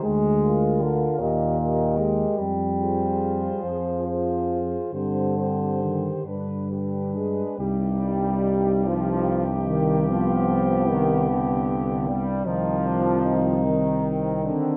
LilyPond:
<<
  \new Staff \with { instrumentName = "Cornet" } { \time 6/8 \key c \minor \tempo 4. = 49 r8 f''4 ees''8 ees''4 | r8 c''4. c''4 | c''8 c''4 b'8 b'4 | g'2.~ |
g'2. | ees'8 d'8 ees'4. r8 | }
  \new Staff \with { instrumentName = "French horn section" } { \time 6/8 \key c \minor r8 bes'4 bes'8 bes'4 | r8 aes'4. aes'4 | g'8 g'4 b'8 g'8 aes'8 | ees'2. |
b2. | c'2. | }
  \new Staff \with { instrumentName = "Trombone section" } { \clef bass \time 6/8 \key c \minor << { r8 f'4 g'8 g'4 | r8 f'4. f'4 | c'8 c'8 r8 d'8 d'4 | r2. |
r2. | r2. | } \\ { r2. | r2. | r4 ees8 d4 aes8 | g4. f4 ees8 |
f4 ees8 d4 g8 | f4. ees4 d8 | } >> }
  \new Staff \with { instrumentName = "Euphonium" } { \clef bass \time 6/8 \key c \minor aes4 d8 bes,4 aes8 | g4. f4 r8 | d4. r4. | g,2.~ |
g,2. | ees2. | }
  \new Staff \with { instrumentName = "Tuba" } { \clef bass \time 6/8 \key c \minor d,4. ees,4. | f,4. f,4. | g,4. g,4. | c,2.~ |
c,2. | c,2~ c,8 r8 | }
>>